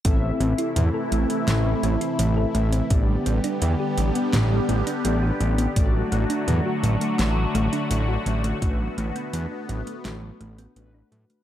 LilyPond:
<<
  \new Staff \with { instrumentName = "Analog polysynth" } { \time 4/4 \key a \dorian \tempo 4 = 84 <c' e' a' e''>2.~ <c' e' a' e''>8 <c' e' a' e''>8 | <b d' g' d''>2. <b d' g' d''>4 | <a d' fis' d''>2.~ <a d' fis' d''>8 <a d' fis' d''>8 | <a d' fis' b'>2. <a d' fis' b'>4 | }
  \new Staff \with { instrumentName = "Synth arpeggio sound" } { \time 4/4 \key a \dorian r16 a16 c'16 e'16 r16 a'16 a16 c'16 r16 a16 c'16 e'16 r16 a'16 a16 c'16 | r16 g16 b16 d'16 r16 g'16 g16 b16 r16 g16 b16 d'16 r16 g'16 g16 b16 | r16 fis16 a16 d'16 r16 fis'16 fis16 a16 r16 fis16 a16 d'16 r16 fis'16 fis16 a16 | r16 fis16 a16 b16 r16 d'16 fis16 a16 r16 fis16 a16 b16 r16 d'16 fis16 a16 | }
  \new Staff \with { instrumentName = "Analog synth pad" } { \time 4/4 \key a \dorian << { <c e'>1 | <d g'>1 | <d fis'>1~ | <d fis'>1 | } \\ { <e a>1 | <g b>1 | <fis a>1 | b1 | } >> }
  \new Staff \with { instrumentName = "Analog synth bass" } { \clef bass \time 4/4 \key a \dorian a,,8 a,,8 e,8 a,,8 a,,8 a,,8 a,,8 a,,8 | a,,8 a,,8 e,8 a,,8 a,,8 a,,8 a,,8 a,,8 | a,,8 a,,8 e,8 a,,8 a,,8 a,,8 a,,8 a,,8 | a,,8 a,,8 e,8 a,,8 a,,8 a,,8 a,,8 a,8 | }
  \new DrumStaff \with { instrumentName = "Drums" } \drummode { \time 4/4 <hh bd>8 hh16 hh16 <hh toml>8 hh16 hh16 <hh sn>8 hh16 hh16 hh8 hh16 hh16 | <hh bd>8 hh16 hh16 hh8 hh16 hh16 <hh sn toml>8 hh16 hh16 hh8 hh16 hh16 | <hh bd>8 hh16 hh16 <hh toml>8 hh16 hh16 <hh sn>8 hh16 hh16 hh8 hh16 hh16 | <hh bd>8 hh16 hh16 hh8 hh16 hh16 <hh sn>8 hh16 hh16 hh8 hh16 hh16 | }
>>